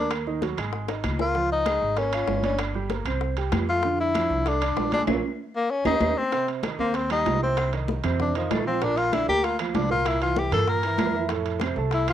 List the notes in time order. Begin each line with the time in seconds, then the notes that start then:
Already playing: D#2 A#3 D4 A#4
0.11 high bongo, high conga, high timbale, claves
0.27 D#3 D#4, high bongo, high conga
0.42 F#3 F#4, high bongo, high conga, high timbale
0.57 G#1 G#3 G#4, high bongo, high conga, high timbale, claves
0.73 high bongo, high conga
0.88 D#4 D#5, high bongo, high conga, high timbale
1.04 C#2, low bongo, high conga, high timbale, claves
1.19 A#3 F4 A#4, low bongo
1.35 F3 F4, high bongo, high conga
1.51 D#4, high conga
1.66 G#3 G#4, high bongo, high conga, high timbale, claves
1.81 G#1, high conga
1.97 A#3 C#4 A#4, high bongo, high conga, high timbale
2.12 F4 F5, high conga, high timbale, claves
2.27 G1, high bongo, low bongo, high conga, low timbale
2.43 C#4 D4 D5, high conga, high timbale
2.58 high bongo, high conga, high timbale, claves
2.74 G3 G4, high bongo, high conga
2.90 A#3 A#4, high bongo, high conga, high timbale
3.05 C2 C4 C5, high bongo, high conga, high timbale, claves
3.21 high bongo, high conga
3.37 G4 G5, high conga, high timbale
3.52 F2, high bongo, low bongo, high conga, high timbale, low timbale, claves
3.67 A3 F4 A4, high bongo, high conga
3.83 D3 D4, high bongo, high conga
4.00 E4, high conga
4.14 F3 D4, high bongo, high conga, high timbale, claves
4.30 C2, high conga
4.46 A3 D4 A4, high bongo, high conga, high timbale
4.61 D4 D5, high conga, high timbale, claves
4.76 A#1, high bongo, low bongo, high conga, low timbale
4.92 G#3 D4 G#4, high conga, high timbale
5.07 A#1 A#3 C#4 F4, low bongo, high conga, high timbale, claves
5.56 A#3
5.71 C#4
5.85 D#2 C#4 D#4 G4, low bongo, high conga, high timbale, claves
6.00 D#2 C#4 D#4 G4, low bongo, high conga, high timbale, claves
6.18 C4
6.32 C3 C4 C5, high bongo, high conga, high timbale
6.48 high conga, high timbale
6.63 D#3 D#4 D#5, high bongo, high conga, high timbale, low timbale, claves
6.79 D#2 A#3 C4 C5 C6, high bongo, high conga
6.94 C4, high bongo, high conga, high timbale
7.10 G3 D#4 G4 G5, high bongo, high conga, high timbale, claves
7.25 C2, high bongo, low bongo, high conga, high timbale, low timbale
7.42 C3 C4 C5
7.57 high bongo, high conga, high timbale, claves
7.73 D#3 D#4 D#5, high conga, high timbale
7.88 high bongo, high conga, low timbale
8.04 F2 C3 C4 C5, high bongo, high conga, low conga, high timbale, claves
8.19 D4, high bongo, high conga, low conga
8.35 D#3 F3 D#4 D#5, high bongo, high timbale
8.50 A#1 A3, high bongo, low bongo, high conga, high timbale, low timbale, claves
8.66 F3 C4 F4 F5
8.81 A#2 A#3 D4 A#4, high bongo, high conga, high timbale
8.97 F4, high conga, high timbale
9.13 D3 D4 E4 D5, high bongo, high conga, high timbale, low timbale, claves
9.28 D2 A#3 G4 A#4 A#5, high bongo, high conga
9.44 F4, high bongo, high conga, high timbale
9.59 F3 A#3 F4 F5, high bongo, high conga, high timbale, claves
9.74 C2 D4, high bongo, low bongo, high conga, high timbale, low timbale
9.90 A#2 A#3 F4 A#4
10.05 E4, high bongo, high conga, high timbale, claves
10.21 E3 E4 F4 E5, high conga, high timbale
10.36 G4, high bongo, high conga, low timbale
10.52 G2 A#2 A#3 A4 A#4, high conga, low conga, high timbale, claves
10.68 A#4, high bongo
10.83 E3 E4 E5, high bongo, high conga, high timbale
10.98 F2, high bongo, low bongo, high conga, high timbale, low timbale, claves
11.15 E3 E4 E5
11.29 A2 A3 A4, high bongo, high conga, high timbale
11.46 high conga, high timbale
11.60 C3 C4 C5, high bongo, high conga, high timbale, low timbale, claves
11.76 C2 A3 A4 A5, high bongo, high conga
11.91 E4, high bongo, high conga, high timbale
12.07 E3 E4 F4 E5, high bongo, high conga, high timbale, claves